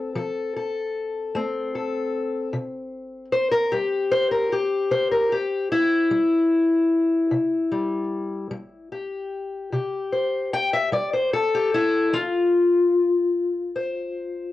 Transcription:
Already playing: C4 A4
0.15 F3 A4
0.56 A4
1.35 A3 C4
1.75 A4
2.53 C3
3.32 C5
3.51 A#4
3.72 G3 G4
4.12 C5
4.31 A#4
4.52 G4
4.91 C3 C5
5.11 A#4
5.32 G4
5.72 E4
6.11 G3
7.31 C3
7.72 G3
8.51 G3
8.92 G4
9.72 C3 G4
10.12 C5
10.53 G5
10.73 E5
10.92 G3 D5
11.13 C5
11.33 A4
11.54 G4
11.74 E4
12.13 F3 F4
13.76 C5

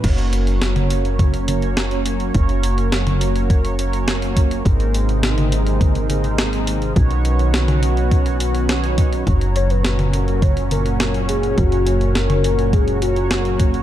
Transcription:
0.04 F#1 F#3 A#3 C#4 F#4 A#4 C#5, kick, closed hi-hat, crash
0.18 closed hi-hat
0.33 closed hi-hat
0.47 closed hi-hat
0.62 snare, closed hi-hat
0.76 closed hi-hat, mid tom
0.90 closed hi-hat
1.05 closed hi-hat
1.19 kick, closed hi-hat, mid tom
1.34 closed hi-hat
1.48 A#3 C#4 F#4 A#4 C#5, closed hi-hat, mid tom
1.62 closed hi-hat
1.77 snare, closed hi-hat
1.91 closed hi-hat
2.06 closed hi-hat
2.20 closed hi-hat
2.34 F#1 A#3 C#4 F#4 A#4 C#5, kick, closed hi-hat
2.49 closed hi-hat
2.63 closed hi-hat
2.78 closed hi-hat
2.92 snare, closed hi-hat
3.07 closed hi-hat, mid tom
3.21 closed hi-hat
3.36 closed hi-hat
3.50 kick, closed hi-hat
3.65 closed hi-hat
3.79 A#3 C#4 F#4 A#4 C#5, closed hi-hat
3.93 closed hi-hat
4.08 snare, closed hi-hat
4.22 closed hi-hat
4.37 kick, closed hi-hat
4.51 closed hi-hat
4.65 G#1 C3 D#3 G#3 C4 D#4 G#4 A#4 C5, kick, closed hi-hat
4.80 closed hi-hat
4.94 closed hi-hat
5.09 closed hi-hat
5.23 snare, closed hi-hat
5.38 closed hi-hat, mid tom
5.52 closed hi-hat
5.67 closed hi-hat
5.81 kick, closed hi-hat, mid tom
5.95 closed hi-hat
6.10 C4 D#4 G#4 A#4 C5, closed hi-hat, mid tom
6.24 closed hi-hat
6.38 snare, closed hi-hat
6.53 closed hi-hat
6.67 closed hi-hat
6.82 closed hi-hat
6.96 B1 F#3 B3 C#4 D#4 F#4 B4 C#5, kick, closed hi-hat
7.11 closed hi-hat
7.25 closed hi-hat
7.39 closed hi-hat
7.54 snare, closed hi-hat
7.68 closed hi-hat, mid tom
7.83 closed hi-hat
7.97 closed hi-hat
8.11 kick, closed hi-hat
8.26 closed hi-hat
8.40 closed hi-hat
8.55 closed hi-hat
8.69 C#4 D#4 F#4 B4 C#5, snare, closed hi-hat
8.84 closed hi-hat
8.98 kick, closed hi-hat
9.13 closed hi-hat
9.27 F#1 A#2 F#3 C#4 F#4 C#5 A#5, kick, closed hi-hat
9.41 closed hi-hat
9.56 C#5, closed hi-hat
9.70 B4, closed hi-hat
9.85 snare, closed hi-hat
9.99 closed hi-hat, mid tom
10.13 A#4, closed hi-hat
10.28 closed hi-hat
10.42 C#5, kick, closed hi-hat, mid tom
10.57 closed hi-hat
10.71 A#3 C#4 F#4 A#4 C#5, closed hi-hat, mid tom
10.86 closed hi-hat
11.00 A#4, snare, closed hi-hat
11.14 closed hi-hat
11.29 G#4, closed hi-hat
11.43 closed hi-hat
11.58 F#1 A#3 C#4 F#4 A#4 C#5, kick, closed hi-hat
11.72 closed hi-hat
11.87 closed hi-hat
12.01 closed hi-hat
12.15 A#4, snare, closed hi-hat
12.30 closed hi-hat, mid tom
12.44 closed hi-hat
12.59 closed hi-hat
12.73 G#4, kick, closed hi-hat
12.88 closed hi-hat
13.02 A#3 C#4 F#4 A#4 C#5, closed hi-hat
13.16 closed hi-hat
13.31 F#4, snare, closed hi-hat
13.45 closed hi-hat
13.60 kick, closed hi-hat
13.74 closed hi-hat

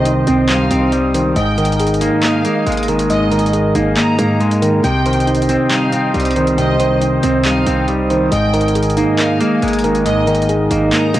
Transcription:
Already playing: C2 C3 D#3 G3 C5 D#5 G5 D#6
0.06 D#4, closed hi-hat
0.27 C2 C4, closed hi-hat
0.49 C#2 G3 D#4 F5, clap, closed hi-hat
0.71 C2 C3 C4, closed hi-hat
0.92 G3, closed hi-hat
1.14 D#3 C5, closed hi-hat
1.36 G#1 G#2 A#4 D#5 G5 G#5, closed hi-hat
1.58 D#3 A#4, closed hi-hat
1.65 closed hi-hat
1.72 closed hi-hat
1.79 G#4, closed hi-hat
1.87 closed hi-hat
1.94 closed hi-hat
2.01 A#3 D#4, closed hi-hat
2.23 A#3 D#4 F5, clap, closed hi-hat
2.45 G#3 A#3, closed hi-hat
2.67 G#1 G#3, closed hi-hat
2.72 closed hi-hat
2.77 closed hi-hat
2.83 closed hi-hat
2.88 D#3 A#4, closed hi-hat
2.99 closed hi-hat
3.10 G#2 D#5, closed hi-hat
3.31 D#3 A#4, closed hi-hat, open hi-hat
3.39 closed hi-hat
3.46 closed hi-hat
3.53 G#4, closed hi-hat
3.75 G#1 A#3 D#4, closed hi-hat
3.97 A#3 D#4 A#5, clap, closed hi-hat
4.19 G#2 G#3 A#3, closed hi-hat
4.40 G#3, closed hi-hat
4.51 closed hi-hat
4.62 D#3 A#4, closed hi-hat
4.84 C2 C3 C5 G5 D#6, closed hi-hat
5.06 D#3 C5, closed hi-hat
5.13 closed hi-hat
5.20 closed hi-hat
5.27 D#4, closed hi-hat
5.35 closed hi-hat
5.42 closed hi-hat
5.49 C4, closed hi-hat
5.71 G3 D#4 F5, clap, closed hi-hat
5.93 C3 C4, closed hi-hat
6.14 C2 G3, closed hi-hat
6.20 closed hi-hat
6.25 closed hi-hat
6.31 closed hi-hat
6.36 D#3 C5, closed hi-hat
6.47 closed hi-hat
6.58 C3 D#5 G5, closed hi-hat
6.80 D#3 C5, closed hi-hat
7.01 D#4, closed hi-hat
7.23 C2 C4, closed hi-hat
7.45 C#2 G3 D#4 F5, clap, closed hi-hat
7.67 C2 C3 C4, closed hi-hat
7.88 G3, closed hi-hat
8.10 D#3 C5, closed hi-hat
8.32 G#1 G#2 A#4 D#5 G5 G#5, closed hi-hat
8.53 D#3 A#4, closed hi-hat
8.61 closed hi-hat
8.68 closed hi-hat
8.75 G#4, closed hi-hat
8.83 closed hi-hat
8.90 closed hi-hat
8.97 A#3 D#4, closed hi-hat
9.19 A#3 D#4 F5, clap, closed hi-hat
9.41 G#3 A#3, closed hi-hat
9.62 G#1 G#3, closed hi-hat
9.68 closed hi-hat
9.73 closed hi-hat
9.79 closed hi-hat
9.84 D#3 A#4, closed hi-hat
9.95 closed hi-hat
10.06 G#2 D#5, closed hi-hat
10.27 D#3 A#4, closed hi-hat, open hi-hat
10.35 closed hi-hat
10.42 closed hi-hat
10.49 G#4, closed hi-hat
10.71 G#1 A#3 D#4, closed hi-hat
10.93 A#3 D#4 A#5, clap, closed hi-hat
11.14 G#2 G#3 A#3, closed hi-hat

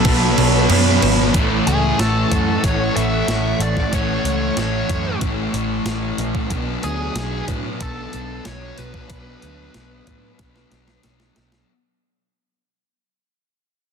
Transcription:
Already playing: B2 F#3 B3 D4 A4 B4 B5
0.05 B1 B2 F#3 B3, kick, crash
0.36 B1 B2 F#3 B3 D4, crash
0.69 F#2 B2 F#3 B3 D4, crash
1.01 G#1 F#3 B3, crash
1.34 A1 A2 E3 A3 C#4 E4 F#5 C#6, kick, closed hi-hat
1.66 C#2 A3 C#4 E4 G#4, closed hi-hat
1.98 A1 A2 E3 A3 C#4 E4 A4, snare, closed hi-hat
2.30 F#2 A3 C#4 E4, kick, closed hi-hat
2.62 A1 A2 E3 A3 C#4 E4 C#5, kick, closed hi-hat
2.95 A1 E3 A3 C#4 E4 E5, closed hi-hat
3.27 A1 A2 E3 A3 C#4 E4, snare, closed hi-hat
3.59 A1 A3 C#4 E4 D5, closed hi-hat
3.77 kick, snare
3.92 A1 A2 E3 A3 C#4 E4 C#5, kick, closed hi-hat
4.24 C#2 A3 C#4 E4, closed hi-hat
4.56 A1 A2 E3 A3 C#4 E4 C#5, snare, closed hi-hat
4.89 F#2 A3 C#4 E4, kick, closed hi-hat
5.21 A1 A2 E3 A3 C#4 E4, kick, closed hi-hat
5.54 A1 E3 A3 C#4 E4, closed hi-hat
5.85 A1 A2 E3 A3 C#4, snare, closed hi-hat
5.90 E4
6.18 A#1 C#4 E4, closed hi-hat
6.22 A3
6.35 kick
6.50 B1 B2 F#3 B3 D4, kick, closed hi-hat
6.83 D2 F#3 B3 D4 G#4, closed hi-hat
7.15 B1 B2 F#3 B3, snare, closed hi-hat
7.19 D4
7.48 A2 F#3 B3 D4, kick, closed hi-hat
7.80 B1 B2 F#3 B3 D4 A4, kick, closed hi-hat
8.13 B1 F#3 B3 D4, closed hi-hat
8.45 B1 B2 F#3 B3 D4 C#5, snare, closed hi-hat
8.78 B1 F#3 B3 D4 B4, snare, closed hi-hat
8.94 kick
9.10 B1 B2 F#3 B3 D4, kick, closed hi-hat
9.42 D2 F#3 B3 D4, closed hi-hat
9.74 B1 B2 F#3 B3 D4, snare, closed hi-hat
10.07 A2 F#3 B3 D4, kick, closed hi-hat
10.39 B1 B2 F#3 B3 D4, kick, snare, closed hi-hat
10.56 snare
10.71 B1 F#3 B3 D4, snare, closed hi-hat
10.88 snare
11.03 B1 B2 F#3 B3 D4, snare, closed hi-hat
11.20 snare
11.36 B1 F#3 B3 D4, snare, closed hi-hat
11.52 snare

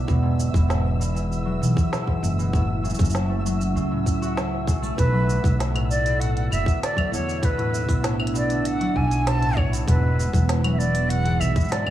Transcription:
Already playing: D3 B3 D5 E5 E6
0.07 E1 B2 E3, kick, shaker
0.23 G#2
0.40 shaker
0.53 E1 B2, kick, shaker
0.68 G#2, snare, shaker
0.99 B2, shaker
1.15 E3 G#4 F#5, shaker
1.32 shaker
1.45 F#3
1.61 B1 E3, shaker
1.77 kick, shaker
1.92 B2, snare, shaker
2.07 G#2, kick
2.23 F#1, shaker
2.39 B2, shaker
2.51 A2 F#3, kick, shaker
2.71 C#4
2.83 C#3, shaker
2.90 shaker
2.94 shaker
2.98 F#1 F#3, kick, shaker
3.05 shaker
3.10 shaker
3.15 snare, shaker
3.29 A3
3.46 F#3, shaker
3.61 A4, shaker
3.76 C#2 C#3, shaker
3.91 A2
4.06 kick, shaker
4.22 F#4, shaker
4.37 C#3, snare, shaker
4.67 B1 C#3, kick, shaker
4.82 A3, shaker
4.97 B1 B2 B4, kick, closed hi-hat, shaker
5.13 F#3 B3
5.29 D3, shaker
5.44 B1, kick, closed hi-hat, shaker
5.59 B2, snare, closed hi-hat, shaker
5.74 A2, closed hi-hat, claves
5.90 D5, shaker
6.05 B2, closed hi-hat, shaker
6.20 A2 F#5, closed hi-hat, shaker
6.37 closed hi-hat
6.50 F#1 B2 E5, claves, shaker
6.65 D3, kick, closed hi-hat, shaker
6.83 D5, snare, closed hi-hat, shaker
6.96 F#3, kick, closed hi-hat, claves
7.11 E2 D3 C#5, shaker
7.19 D4
7.29 shaker
7.42 B2 B4, kick, closed hi-hat, shaker
7.58 A2, closed hi-hat
7.74 shaker
7.88 B1 B2, kick, closed hi-hat, shaker
8.03 A2, snare, closed hi-hat, shaker
8.20 claves
8.27 closed hi-hat
8.34 B2 D5, shaker
8.49 D3, closed hi-hat, shaker
8.65 F#5, closed hi-hat, shaker
8.80 F#3, closed hi-hat
8.95 B1 D3 G#5, kick
9.11 closed hi-hat, shaker
9.26 B2 A5, snare, closed hi-hat, shaker
9.41 A2, closed hi-hat
9.57 C#5, kick, claves
9.72 B2, closed hi-hat, shaker
9.87 E1 G#2 E3 B4, kick, closed hi-hat, shaker
10.18 B2, shaker
10.33 E1 E3, kick, closed hi-hat, shaker
10.49 snare, closed hi-hat, shaker
10.64 F#3, closed hi-hat, claves
10.73 G#4 E5
10.78 E3 D5, shaker
10.93 F#5, closed hi-hat, shaker
11.09 B2 F#5, closed hi-hat, shaker
11.24 G#2, closed hi-hat
11.40 B1 E5, claves, shaker
11.54 B2, kick, closed hi-hat, shaker
11.60 shaker
11.64 shaker
11.68 G#2 D5, snare, closed hi-hat, shaker
11.72 shaker
11.86 kick, claves

